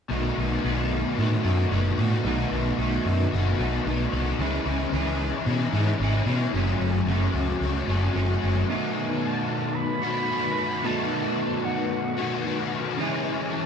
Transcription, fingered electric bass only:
0.11 B1
0.38 B1
0.64 B1
1.18 A2
1.44 F#2
1.72 F#1
1.98 A2
2.24 B1
2.52 B1
2.78 B1
3.05 F#2
3.33 F#1
3.59 B1
3.86 B1
4.13 C2
4.39 C#2
4.65 C#2
4.92 C#2
5.46 B2
5.73 G#2
5.99 G#1
6.26 B2
6.53 F#1
6.80 F#1
7.06 F#1
7.34 C#2
7.61 C#2
7.87 F#1
8.15 F#1
8.43 F#1

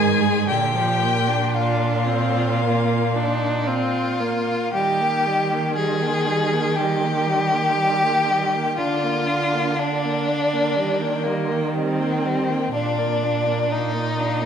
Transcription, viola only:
Already playing: D#3
0.22 G#3
0.48 D3
0.75 F3
1.02 A#3
1.28 D4
1.55 D4
2.07 C4
2.61 A#3
3.16 D4
3.67 C4
4.20 A#3
4.74 G3
5.00 A#3
5.27 G3
5.53 A#3
5.78 G3
6.02 A#3
6.28 G3
6.54 A#3
6.79 G3
7.05 A#3
7.27 G3
7.53 A#3
7.77 G3
8.03 A#3
8.29 G3
8.55 A#3
8.79 D4
9.04 A#3
9.28 D4
9.54 A#3
9.79 D4
10.04 A#3
10.28 D4
10.53 A#3
10.77 G3
11.01 A#3
11.26 G3
11.51 A#3
11.75 G3
12.00 A#3
12.25 G3
12.49 A#3
12.74 D4
12.99 A#3
13.24 D4
13.46 A#3
13.69 D4
13.94 A#3
14.18 D4
14.42 A#3

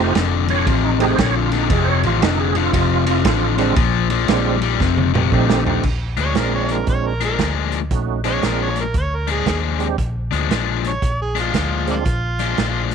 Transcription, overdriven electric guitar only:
Already playing: F2
0.00 C3
0.16 F2 D3
0.49 F2 D3
0.67 F2 C3
1.01 F2 C3
1.19 F2 D3
1.52 F2 D3
1.71 F2 C3
2.04 F2 C3
2.22 F2 D3
2.55 F2 D3
2.73 F2 C3
3.06 F2 C3
3.24 F2 D3
3.58 F2 D3
3.77 A#2 F3
4.10 A#2 F3
4.29 A#2 G3
4.62 A#2 G3
4.80 F2 C3
5.14 F2 C3
5.32 F2 D3
5.66 F2 D3
6.17 A#2 F3 G#3 D4
6.36 A#2 F3 G#3 D4
7.21 A#2 F3 G#3 D4
7.40 A#2 F3 G#3 D4
8.24 A#2 F3 G#3 D4
8.43 A#2 F3 G#3 D4
9.28 A#2 F3 G#3 D4
9.46 A#2 F3 G#3 D4
10.31 A#2 F3 G#3 D4
10.50 A#2 F3 G#3 D4
11.35 A#2 F3 G#3 D4
11.54 A#2 F3 G#3 D4
12.40 A#2 F3 G#3 D4
12.58 A#2 F3 G#3 D4

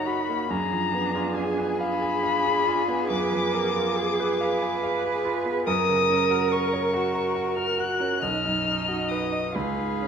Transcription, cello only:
Already playing: D#4
0.51 D4
1.81 D4
3.09 B4
3.53 A#4
3.97 G#4
4.40 B4
5.67 A#4
6.94 F#4
8.22 D#4
9.55 G#4

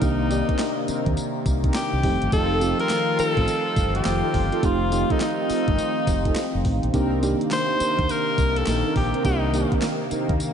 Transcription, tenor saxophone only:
Already playing: D#4
1.76 G4
2.33 A4
2.80 A#4
3.20 A4
3.96 G4
4.64 F4
5.11 D#4
5.22 D#4
7.53 C5
8.11 A#4
8.57 A4
8.97 G4
9.25 D#4

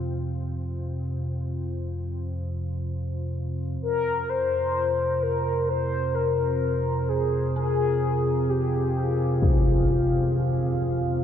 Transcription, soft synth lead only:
3.82 A#4
4.29 C5
5.22 A#4
5.69 C5
6.15 A#4
7.09 G#4
7.56 G#4
8.49 G4

